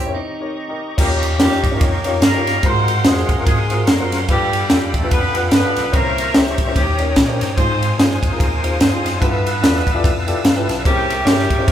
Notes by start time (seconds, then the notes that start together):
Already playing: F2 E4 G4 C5 E5 A#5 C#6
0.06 C#4 E4 A#4 C#5
0.15 D#3 C4 D#4 G4 D#5 C#6
0.40 D#4 G4 A#4 C#5
0.68 D#4 G4 A#4 D#5
0.98 D#2 D#3 G3 A#3 C#4 D#4 F4 G4 A#4 D#5 F5 C#6, kick, crash
1.23 ride
1.38 F2 G3 A#3 C#4 D#4 F4 G4 A#4, snare, ride
1.52 snare
1.64 G2, kick, ride
1.72 C#4 D#4 F4 G4 A#4
1.81 F2 A#3 C#4 G4 A#4, kick, ride
2.04 C#4 D#4 F4 G4 C#5, ride
2.20 G2 A#3 C#4 G4 A#4, snare, ride
2.34 C#4 D#4 F4 G4 A#4
2.47 snare, ride
2.63 G#2 C4 D#4 F4 F#4 G#4 A#4 C5 F#5 C6, kick, ride
2.88 ride
3.04 F2 G#3 C4 D#4 F4 F#4 G#4 C5, snare, ride
3.18 snare
3.28 F#2, kick, ride
3.37 C4 F4 F#4 G#4 A#4
3.46 G#2 G#3 C4 D#4 G#4, kick, ride
3.70 C4 F4 F#4 G#4 A#4, ride
3.87 F#2 A#3 D#4 F#4 A#4, snare, ride
3.99 C4 F4 F#4 G#4 A#4
4.12 F#2, snare, ride
4.28 G2 G3 B3 D4 F4 G4 A4 B4 G5 B5, kick, ride
4.53 ride
4.69 F2 G3 D4 F4 G4 A4 D5, snare, ride
4.94 E2 A3 A4, kick, ride
5.02 D4 F4 G4 A4 B4
5.11 F2 B3 D4 F4 B4, kick, ride
5.35 B3 D4 F4 G4 A4 B4, ride
5.51 G2 B3 D4 F4 B4, snare, ride
5.65 D4 F4 G4 A4 D5
5.76 B1, snare, ride
5.92 C2 C3 A#3 C#4 E4 G4 A#4 C5 E5 A#5 C#6, kick, ride
6.18 ride
6.34 C#2 G3 A#3 C#4 E4 G4 A#4 C5, snare, ride
6.47 snare
6.58 kick, ride
6.67 C#4 E4 G4 A#4 C5
6.75 D#2 D#3 G3 A#3 C#4 G4 C#5 G5 D#6, kick, ride
6.99 C#4 D#4 G4 A#4 C#5, ride
7.16 A#2 A#3 C#4 G4 A#4, kick, snare, ride
7.28 C#4 D#4 G4 A#4 C5
7.41 G2, snare, ride
7.57 G#2 C4 D#4 F4 G#4 C5 F5 G#5, kick, ride
7.82 ride
7.98 G2 G#3 C4 D#4 F4 G#4 C5, snare, ride
8.11 snare
8.22 F2, kick, ride
8.31 C4 D#4 F4 G#4 A#4
8.39 D#2 A#3 D#4 F4 A#4, kick, ride
8.63 C4 D#4 F4 G#4 C5, ride
8.80 G2 C4 D#4 F4 C5, snare, ride
8.91 C4 D#4 F4 G#4 C5
9.05 F#2, snare, ride
9.20 G2 B3 D4 E4 F4 G4 A4 B4 A5 E6, kick, ride
9.47 ride
9.62 E2 E4 F4 G4 A4 D5, snare, ride
9.76 snare
9.87 kick, ride
9.94 E4 F4 G4 A4 D5
10.04 F2, kick, ride
10.26 E4 F4 G4 A4 D5, ride
10.44 G2 F5, snare, ride
10.55 E4 F4 G4 A4 B4
10.67 B1 A5, snare, ride
10.85 C2 C3 G3 A#3 C#4 E4 G4 G#4 A#4 C5 E5 G5 C#6, kick, ride
11.10 ride
11.25 G2 G3 A#3 C#4 E4 G4 G#4 A#4 C#5, snare, ride
11.39 snare
11.50 kick, ride
11.59 C#4 E4 G#4 A#4 C5
11.68 E2 E4, kick, ride